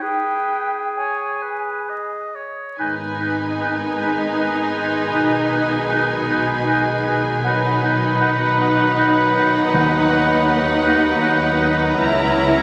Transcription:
0.02 clarinet G#4, oboe B4, flute G5
0.97 oboe C#5, flute G#5
1.42 oboe B4
1.89 oboe D#5
2.35 oboe C#5
2.79 double bass section G#1, cello section G#2, trombone section D#3 G#3, french horn section B3 D#4, clarinet D#4, viola section D#4, trumpet G#4, violin section B4 G#5, oboe B4, flute G#5
3.20 clarinet D#4, oboe B4, flute G#5
3.60 clarinet D#4, oboe B4, flute G#5
3.99 clarinet D#4, oboe B4, flute G#5
4.38 clarinet D#4, oboe B4, flute G#5
4.77 clarinet D#4, oboe B4, flute G#5
5.14 double bass section B1, cello section B2, clarinet D#4, oboe B4, flute G#5
5.52 clarinet D#4, oboe B4, flute G#5
5.90 clarinet D#4, oboe B4
5.94 flute G#5
6.29 clarinet D#4, oboe B4, flute G#5
6.67 clarinet D#4, oboe B4, flute G#5
7.06 clarinet D#4, oboe B4, flute G#5
7.44 trombone section D#3 F#3, french horn section B3 D#4, viola section D#4, clarinet D#4, violin section B4, oboe B4, trumpet B4, flute F#5
7.81 clarinet D#4, oboe B4, flute F#5
8.20 clarinet D#4, oboe B4, flute F#5, violin section F#5
8.59 clarinet D#4, oboe B4, flute F#5
8.97 clarinet D#4, oboe B4, flute F#5
9.36 clarinet D#4, oboe B4, flute F#5
9.73 double bass section D#2, cello section D#2, timpani D#3, clarinet D#4, oboe B4, flute F#5
10.10 clarinet D#4, oboe B4, flute F#5
10.46 clarinet D#4, oboe B4, flute F#5
10.84 clarinet D#4, oboe B4, flute F#5
11.22 clarinet D#4, oboe B4, flute F#5
11.59 clarinet D#4, oboe B4, flute F#5
11.95 double bass section C#2, cello section C#2, trombone section C#3, clarinet E4, viola section E4, french horn section E4, oboe A#4, trumpet C#5, flute E5, violin section A#5

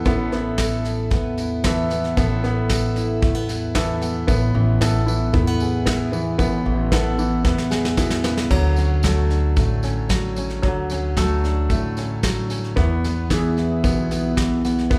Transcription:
Already playing: steel-string acoustic guitar E3 E4, upright piano E4 A4
0.05 upright bass A1, steel-string acoustic guitar A2 A4, upright piano B3, kick, snare, tambourine
0.32 upright piano B3, steel-string acoustic guitar E4, snare
0.58 steel-string acoustic guitar A4, kick, snare, tambourine
0.85 steel-string acoustic guitar E4, snare, tambourine
1.10 upright bass E2, steel-string acoustic guitar B3, kick, snare, tambourine
1.37 steel-string acoustic guitar E4, snare, tambourine
1.64 steel-string acoustic guitar E3, upright piano B3 E4 A4, kick, snare, tambourine
1.90 steel-string acoustic guitar B3, snare, tambourine
2.04 snare
2.17 upright bass A1, steel-string acoustic guitar A2 A4, upright piano B3, kick, snare, tambourine
2.44 upright piano B3, steel-string acoustic guitar E4, snare, tambourine
2.69 steel-string acoustic guitar A4, kick, snare, tambourine
2.96 steel-string acoustic guitar E4, snare, tambourine
3.22 upright bass E2, steel-string acoustic guitar A3, kick, snare, tambourine
3.35 steel-string acoustic guitar B3
3.49 steel-string acoustic guitar E4, snare, tambourine
3.75 steel-string acoustic guitar E3, upright piano B3 E4 A4, kick, snare, tambourine
4.01 steel-string acoustic guitar B3, snare, tambourine
4.27 upright bass A1, steel-string acoustic guitar A2, upright piano B3, kick, tambourine
4.54 upright bass A1, steel-string acoustic guitar E3
4.81 steel-string acoustic guitar B3, upright piano B3 E4 A4, kick, snare, tambourine
5.06 steel-string acoustic guitar E3, upright piano E4, tambourine
5.33 upright bass E2, steel-string acoustic guitar A3, upright piano B3 E4, kick
5.47 steel-string acoustic guitar B3
5.60 steel-string acoustic guitar G#4, tambourine
5.86 upright piano B3 E4, steel-string acoustic guitar E4, kick, snare, tambourine
6.12 steel-string acoustic guitar E3, upright piano B3, tambourine
6.38 upright bass A1, steel-string acoustic guitar A2, upright piano B3, kick, tambourine
6.66 upright bass A1, steel-string acoustic guitar E3
6.92 upright piano B3 E4 A4, steel-string acoustic guitar B3, kick, snare, tambourine
7.18 steel-string acoustic guitar E3, upright piano E4, tambourine
7.45 upright bass E2, upright piano B3 E4, steel-string acoustic guitar B3, kick, snare
7.58 snare
7.71 steel-string acoustic guitar G#4, snare, tambourine
7.85 snare
7.97 steel-string acoustic guitar B2, upright piano B3 E4, kick, snare, tambourine
8.10 snare
8.24 steel-string acoustic guitar C#3, upright piano B3, snare, tambourine
8.37 snare
8.51 upright bass D2, steel-string acoustic guitar D3, upright piano F#3, kick, snare, crash
8.76 steel-string acoustic guitar C#4, snare, tambourine
9.03 steel-string acoustic guitar F#3, upright piano A3 A4, kick, snare, tambourine
9.30 steel-string acoustic guitar D4, snare, tambourine
9.56 upright bass A1, steel-string acoustic guitar A2, upright piano A3, kick, snare, tambourine
9.83 steel-string acoustic guitar C#4, snare, tambourine
10.09 steel-string acoustic guitar F#3, kick, snare, tambourine
10.36 steel-string acoustic guitar C#4, snare, tambourine
10.50 snare
10.62 upright bass D2, steel-string acoustic guitar D3, upright piano F#3, kick, snare
10.90 steel-string acoustic guitar C#4, snare, tambourine
11.17 steel-string acoustic guitar F#3, upright piano A3 A4, kick, snare, tambourine
11.44 steel-string acoustic guitar D4, snare, tambourine
11.69 upright bass A1, steel-string acoustic guitar A2, upright piano A3, kick, snare, tambourine
11.97 steel-string acoustic guitar C#4, snare, tambourine
12.23 steel-string acoustic guitar F#3, kick, snare, tambourine
12.50 steel-string acoustic guitar C#4, snare, tambourine
12.64 snare
12.76 steel-string acoustic guitar E2, upright bass E2, upright piano B3, kick, snare
13.04 steel-string acoustic guitar B3, snare, tambourine
13.30 steel-string acoustic guitar E3, upright piano B3 E4 G#4, kick, snare, tambourine
13.57 steel-string acoustic guitar E4, snare, tambourine
13.84 upright bass B1, steel-string acoustic guitar B2, upright piano B3, kick, snare, tambourine
14.11 steel-string acoustic guitar B3, snare, tambourine
14.36 steel-string acoustic guitar E3, kick, snare, tambourine
14.65 steel-string acoustic guitar B3, snare, tambourine
14.78 snare
14.90 steel-string acoustic guitar E2, upright bass E2, upright piano B3, kick, snare, tambourine

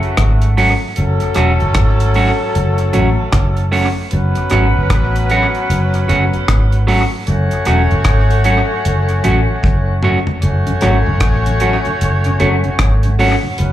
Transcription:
Already playing: horn section C#3 F#3 A3 F#4
0.03 closed hi-hat
0.17 fingered electric bass G#1, kick, cross-stick, closed hi-hat
0.42 closed hi-hat
0.57 clean electric guitar F#3 A3 C#4 F#4, open hi-hat
0.96 fingered electric bass F#1, horn section F#3 A3 C#4 A4, closed hi-hat
1.20 closed hi-hat
1.34 fingered electric bass E1, clean electric guitar F#3 A3 C#4 F#4, cross-stick, closed hi-hat
1.60 fingered electric bass F#1, closed hi-hat
1.74 fingered electric bass G#1, kick, cross-stick, closed hi-hat
2.00 closed hi-hat
2.14 clean electric guitar F#3 A3 C#4 F#4, open hi-hat
2.55 fingered electric bass F#1, closed hi-hat
2.78 closed hi-hat
2.93 fingered electric bass A1, clean electric guitar F#3 A3 C#4 F#4, closed hi-hat
3.33 fingered electric bass F#1, kick, cross-stick, closed hi-hat
3.57 closed hi-hat
3.72 clean electric guitar F#3 A3 C#4 F#4, open hi-hat
4.10 fingered electric bass F#1, horn section F#3 B3 C#4 B4, closed hi-hat
4.35 closed hi-hat
4.50 fingered electric bass G#1, clean electric guitar F#3 A3 C#4 F#4, cross-stick, closed hi-hat
4.77 fingered electric bass F#1
4.90 fingered electric bass A1, kick, cross-stick, closed hi-hat
5.16 closed hi-hat
5.30 clean electric guitar F#3 A3 C#4 F#4, closed hi-hat
5.55 closed hi-hat
5.70 fingered electric bass F#1, closed hi-hat
5.94 closed hi-hat
6.08 fingered electric bass F#1, clean electric guitar F#3 A3 C#4 F#4, closed hi-hat
6.33 closed hi-hat
6.48 fingered electric bass G#1, kick, cross-stick, closed hi-hat
6.72 closed hi-hat
6.87 clean electric guitar F#3 A3 C#4 F#4, open hi-hat
7.26 fingered electric bass F#1, horn section A3 C#4 F#4 C#5, closed hi-hat
7.51 closed hi-hat
7.65 fingered electric bass E1, clean electric guitar F#3 A3 C#4 F#4, cross-stick, closed hi-hat
7.91 fingered electric bass F#1, closed hi-hat
8.04 fingered electric bass G#1, kick, cross-stick, closed hi-hat
8.31 closed hi-hat
8.44 clean electric guitar F#3 A3 C#4 F#4, closed hi-hat
8.85 fingered electric bass F#1, closed hi-hat
9.09 closed hi-hat
9.24 fingered electric bass A1, clean electric guitar F#3 A3 C#4 F#4, closed hi-hat
9.63 fingered electric bass F#1, kick, high tom
10.03 clean electric guitar F#3 A3 C#4 F#4, mid tom
10.27 floor tom
10.42 fingered electric bass F#1, horn section A3 C#4 F#4 C#5, closed hi-hat
10.67 tonewheel organ F#2 C#3, closed hi-hat
10.81 fingered electric bass G#1, clean electric guitar F#3 A3 C#4 F#4, tonewheel organ A3 C#4 F#4, cross-stick, closed hi-hat
11.07 fingered electric bass F#1, tonewheel organ F#2 C#3
11.20 fingered electric bass A1, kick, cross-stick, closed hi-hat
11.46 tonewheel organ F#2 C#3, closed hi-hat
11.60 clean electric guitar F#3 A3 C#4 F#4, tonewheel organ A3 C#4 F#4, closed hi-hat
11.85 tonewheel organ F#2 C#3, closed hi-hat
12.01 fingered electric bass F#1, closed hi-hat
12.24 tonewheel organ F#2 C#3, closed hi-hat
12.40 fingered electric bass F#1, clean electric guitar F#3 A3 C#4 F#4, tonewheel organ A3 C#4 F#4, closed hi-hat
12.64 tonewheel organ F#2 C#3, closed hi-hat
12.79 fingered electric bass G#1, kick, cross-stick, closed hi-hat
13.03 tonewheel organ F#2 C#3, closed hi-hat
13.19 clean electric guitar F#3 A3 C#4 F#4, tonewheel organ A3 C#4 F#4, open hi-hat
13.43 tonewheel organ F#2 C#3
13.58 fingered electric bass F#1, horn section F#3 B3 C#4 B4, closed hi-hat

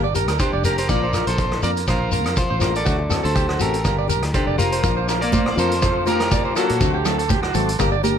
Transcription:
Already playing: fingered electric bass G1
0.04 clean electric guitar D5
0.14 steel-string acoustic guitar D4 G4, clean electric guitar A#4, closed hi-hat, shekere
0.28 fingered electric bass D2, clean electric guitar A#4, cross-stick, closed hi-hat, shekere
0.39 clean electric guitar D4 G4 C5, kick, closed hi-hat, shekere
0.53 fingered electric bass F1, clean electric guitar D5
0.64 steel-string acoustic guitar D4 G4, clean electric guitar G4 A#4, closed hi-hat, shekere
0.78 clean electric guitar G4 A#4 C5, closed hi-hat, shekere
0.89 fingered electric bass A#1, steel-string acoustic guitar F3 A#3 D4 F4, clean electric guitar A#4 D5, kick, closed hi-hat, shekere
1.03 clean electric guitar C5
1.13 steel-string acoustic guitar A#3 D4 F4, clean electric guitar A#4, cross-stick, closed hi-hat, shekere
1.27 fingered electric bass A#1, clean electric guitar A4 C5, closed hi-hat, shekere
1.38 clean electric guitar C5, kick, closed hi-hat, shekere
1.52 cross-stick
1.63 fingered electric bass F2, steel-string acoustic guitar A#3 D4 F4, clean electric guitar A#4 D5, closed hi-hat, shekere
1.76 closed hi-hat, shekere
1.87 fingered electric bass A#1, clean electric guitar F4 A#4 C5, kick, cross-stick, closed hi-hat, shekere
2.11 steel-string acoustic guitar A#3 D4 F4, clean electric guitar A#4, closed hi-hat, shekere
2.24 fingered electric bass F2, clean electric guitar A#4, cross-stick, closed hi-hat, shekere
2.36 clean electric guitar F4 C5, kick, closed hi-hat, shekere
2.50 fingered electric bass A1, clean electric guitar C5
2.60 steel-string acoustic guitar A#3 D4 F4, clean electric guitar A#4, cross-stick, closed hi-hat, shekere
2.75 clean electric guitar A4 D5, closed hi-hat, shekere
2.85 fingered electric bass D2, steel-string acoustic guitar F#3 A3 F#4, clean electric guitar F#4, muted steel-string acoustic guitar stroke, kick, closed hi-hat, shekere
2.99 muted clean electric guitar stroke
3.09 steel-string acoustic guitar A3 C4 F#4, clean electric guitar A4, cross-stick, closed hi-hat, shekere
3.23 fingered electric bass D2, clean electric guitar A4 C5, closed hi-hat, shekere
3.35 clean electric guitar G4, kick, closed hi-hat, shekere
3.49 clean electric guitar F#4, cross-stick
3.59 fingered electric bass A1, steel-string acoustic guitar A3 C4 F#4, clean electric guitar G4 A4 A#4, closed hi-hat, shekere
3.73 closed hi-hat, shekere
3.84 fingered electric bass G1, steel-string acoustic guitar A#3 D4 G4, clean electric guitar A#4, kick, cross-stick, closed hi-hat, shekere
3.98 clean electric guitar D5
4.08 steel-string acoustic guitar D4 G4, clean electric guitar A#4, closed hi-hat, shekere
4.22 fingered electric bass D2, cross-stick, closed hi-hat, shekere
4.34 alto saxophone D3, clean electric guitar D4 G4 C5, kick, closed hi-hat, shekere
4.47 fingered electric bass F1, clean electric guitar D5
4.58 alto saxophone F3, steel-string acoustic guitar D4 G4, clean electric guitar F4 A#4, closed hi-hat, shekere
4.72 clean electric guitar C5, closed hi-hat, shekere
4.82 fingered electric bass A#1, steel-string acoustic guitar F3 A#3 D4 F4, clean electric guitar A#4, tonewheel organ F5 D6, kick, closed hi-hat, muted conga, shekere
4.97 clean electric guitar C5
5.08 steel-string acoustic guitar A#3 D4, clean electric guitar A#4, cross-stick, closed hi-hat, shekere
5.21 alto saxophone A#3, clean electric guitar A#4 D5, closed hi-hat
5.32 clean electric guitar C5, kick, closed hi-hat, high conga, shekere
5.46 cross-stick
5.51 alto saxophone A#3, clean electric guitar D5
5.56 fingered electric bass F2, alto saxophone F3, steel-string acoustic guitar A#3 D4 F4, clean electric guitar A4 A#4 C5, closed hi-hat, shekere
5.71 closed hi-hat
5.82 clean electric guitar C5, kick, cross-stick, closed hi-hat, muted conga, shekere
6.06 alto saxophone F3, steel-string acoustic guitar A#3 D4 F4, clean electric guitar A#4, closed hi-hat, muted conga, high conga, shekere
6.10 clean electric guitar G4
6.20 clean electric guitar A#4, cross-stick, closed hi-hat
6.31 clean electric guitar D5, kick, closed hi-hat, high conga, shekere
6.45 clean electric guitar C5
6.55 alto saxophone F#3, steel-string acoustic guitar A#3 D4 F4, clean electric guitar F#4 A4 A#4, cross-stick, closed hi-hat, muted conga, shekere
6.69 fingered electric bass A#2, closed hi-hat
6.80 fingered electric bass D2, steel-string acoustic guitar F#3 A3 C4 F#4, clean electric guitar F#4, tonewheel organ F#5 C6 D6, kick, closed hi-hat, shekere
6.94 clean electric guitar G4
7.05 steel-string acoustic guitar A3 C4 F#4, clean electric guitar A4, cross-stick, closed hi-hat, low conga, shekere
7.19 clean electric guitar A4, closed hi-hat
7.29 clean electric guitar G4, kick, closed hi-hat, high conga, shekere
7.43 clean electric guitar F#4, cross-stick
7.54 fingered electric bass G#1, steel-string acoustic guitar A3 C4 F#4, clean electric guitar A4, closed hi-hat, low conga, shekere
7.69 closed hi-hat
7.79 fingered electric bass G1, steel-string acoustic guitar A#3 D4 G4, clean electric guitar A#4, tonewheel organ G5, kick, cross-stick, closed hi-hat, muted conga, shekere
7.92 clean electric guitar D5
8.03 steel-string acoustic guitar D4 G4, clean electric guitar A#4, closed hi-hat, muted conga, high conga, shekere

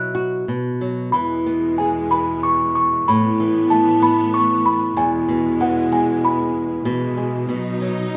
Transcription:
Already playing: nylon-string guitar B2 F#3 E4, music box F#6
0.15 nylon-string guitar F#4
0.48 nylon-string guitar B2
0.81 nylon-string guitar F#3
1.12 string section E2 B2 G#3, nylon-string guitar E3, music box B5
1.46 nylon-string guitar B3
1.78 nylon-string guitar G#4, music box G#5
2.11 nylon-string guitar B4, music box B5
2.43 music box C#6
2.75 music box C#6
3.07 string section A2 E3 B3, nylon-string guitar A2, music box B5
3.40 nylon-string guitar E3
3.70 nylon-string guitar A3, music box A5
4.02 nylon-string guitar B3, music box B5
4.34 music box C#6
4.66 music box B5
4.96 string section E2 B2 G#3, nylon-string guitar E2, music box G#5
5.28 nylon-string guitar B2
5.60 nylon-string guitar E3, music box F#5
5.92 nylon-string guitar G#3, music box G#5
6.25 music box B5
6.84 string section B2 E3 G#3, nylon-string guitar B2
7.17 nylon-string guitar G#3
7.49 nylon-string guitar B2, string section F#3 D#4
7.81 nylon-string guitar F#3

